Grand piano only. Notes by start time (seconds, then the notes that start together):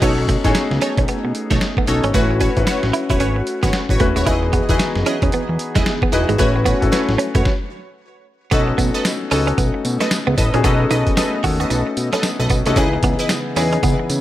0.01 C#4 D#4 F#4 A4
0.44 C#4 D#4 F#4 G#4
1.88 C#4 D#4 F#4 A4
2.14 C#4 E4 F#4 B4
2.56 C#4 E4 F#4 B4
4.00 C#4 E4 F#4 B4
4.25 D#4 F#4 G#4 B4
4.69 D#4 F#4 G#4 B4
6.12 D#4 F#4 G#4 B4
6.38 C#4 E4 F#4 B4
6.81 C#4 E4 F#4 A4
8.52 C#4 D#4 F#4 A4
9.31 C#4 D#4 F#4 A4
10.54 C#4 D#4 F#4 G#4
10.64 C#4 D#4 F#4 A4
11.44 C#4 D#4 F#4 A4
12.66 C#4 D#4 F#4 A4
12.77 B3 D#4 E4 G#4
13.56 B3 D#4 E4 G#4